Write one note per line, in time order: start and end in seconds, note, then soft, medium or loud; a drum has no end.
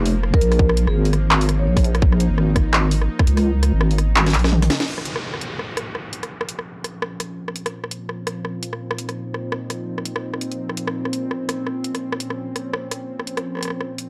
0.00 0.33 F1 medium
0.00 4.84 F3 medium
0.00 4.84 A#3 medium
0.00 4.86 D#4 medium
0.06 open hi-hat medium
0.24 cross-stick medium
0.34 0.70 A#4 medium
0.34 kick loud
0.41 0.86 A#1 medium
0.41 closed hi-hat medium
0.52 cross-stick medium
0.52 open hi-hat soft
0.59 kick loud
0.69 cross-stick medium
0.77 closed hi-hat medium
0.87 1.68 G#1 medium
0.87 1.09 G#4 loud
0.87 cross-stick medium
1.05 open hi-hat soft
1.13 cross-stick medium
1.13 closed hi-hat medium
1.31 cross-stick medium
1.31 clap loud
1.41 open hi-hat medium
1.49 cross-stick medium
1.49 closed hi-hat medium
1.59 1.64 C#5 medium
1.67 2.29 A#1 loud
1.67 1.73 C#5 medium
1.77 kick medium
1.77 cross-stick medium
1.77 open hi-hat medium
1.84 closed hi-hat medium
1.95 cross-stick medium
1.95 closed hi-hat soft
2.02 kick loud
2.12 cross-stick medium
2.20 closed hi-hat medium
2.30 3.08 G#1 medium
2.38 cross-stick medium
2.56 kick medium
2.56 cross-stick medium
2.56 closed hi-hat medium
2.73 cross-stick medium
2.73 clap loud
2.91 open hi-hat medium
3.02 cross-stick medium
3.19 kick loud
3.19 cross-stick medium
3.27 3.72 C#2 loud
3.27 closed hi-hat medium
3.37 cross-stick medium
3.37 open hi-hat soft
3.63 cross-stick medium
3.63 closed hi-hat medium
3.73 4.36 G#1 medium
3.81 cross-stick medium
3.91 open hi-hat soft
3.98 cross-stick medium
3.98 closed hi-hat medium
4.16 clap loud
4.16 high tom medium
4.26 cross-stick medium
4.26 snare medium
4.26 open hi-hat medium
4.30 clap medium
4.30 closed hi-hat medium
4.30 open hi-hat medium
4.34 4.69 A#1 loud
4.34 open hi-hat soft
4.39 open hi-hat soft
4.44 cross-stick medium
4.44 snare medium
4.52 mid tom medium
4.62 cross-stick medium
4.62 open hi-hat medium
4.62 mid tom medium
4.70 snare loud
4.70 closed hi-hat medium
4.80 snare medium
4.80 closed hi-hat soft
4.88 14.09 A#2 medium
4.88 14.09 F3 medium
4.88 14.09 C4 medium
4.88 7.73 C#4 medium
4.88 crash medium
4.88 downlifter medium
4.98 cross-stick soft
5.05 closed hi-hat medium
5.16 cross-stick medium
5.34 cross-stick soft
5.41 closed hi-hat medium
5.59 cross-stick soft
5.77 cross-stick medium
5.77 closed hi-hat medium
5.95 cross-stick medium
6.13 closed hi-hat medium
6.23 cross-stick soft
6.23 closed hi-hat soft
6.41 cross-stick medium
6.49 closed hi-hat medium
6.59 cross-stick soft
6.84 cross-stick soft
6.84 closed hi-hat medium
7.02 cross-stick medium
7.20 cross-stick medium
7.20 closed hi-hat medium
7.48 cross-stick soft
7.56 closed hi-hat medium
7.66 cross-stick medium
7.66 closed hi-hat soft
7.73 10.58 D#4 medium
7.84 cross-stick soft
7.91 closed hi-hat medium
8.09 cross-stick soft
8.27 cross-stick medium
8.27 closed hi-hat medium
8.45 cross-stick soft
8.63 closed hi-hat medium
8.73 cross-stick soft
8.91 cross-stick medium
8.98 closed hi-hat medium
9.09 cross-stick soft
9.09 closed hi-hat soft
9.34 cross-stick soft
9.52 cross-stick medium
9.70 cross-stick soft
9.70 closed hi-hat medium
9.98 cross-stick soft
10.05 closed hi-hat medium
10.16 cross-stick medium
10.34 cross-stick soft
10.41 closed hi-hat medium
10.52 closed hi-hat soft
10.59 13.44 C#4 medium
10.69 cross-stick soft
10.77 closed hi-hat medium
10.87 cross-stick medium
11.05 cross-stick soft
11.13 closed hi-hat medium
11.31 cross-stick soft
11.49 cross-stick medium
11.49 closed hi-hat medium
11.67 cross-stick soft
11.84 closed hi-hat medium
11.95 cross-stick soft
11.95 closed hi-hat soft
12.12 cross-stick medium
12.20 closed hi-hat medium
12.30 cross-stick soft
12.56 cross-stick soft
12.56 closed hi-hat medium
12.74 cross-stick medium
12.91 cross-stick soft
12.91 closed hi-hat medium
13.20 cross-stick soft
13.27 closed hi-hat medium
13.37 cross-stick medium
13.37 closed hi-hat soft
13.45 14.09 F4 medium
13.55 cross-stick soft
13.57 cross-stick soft
13.59 cross-stick soft
13.61 cross-stick soft
13.63 cross-stick soft
13.63 closed hi-hat medium
13.65 cross-stick soft
13.68 cross-stick soft
13.70 cross-stick soft
13.81 cross-stick soft
13.98 closed hi-hat medium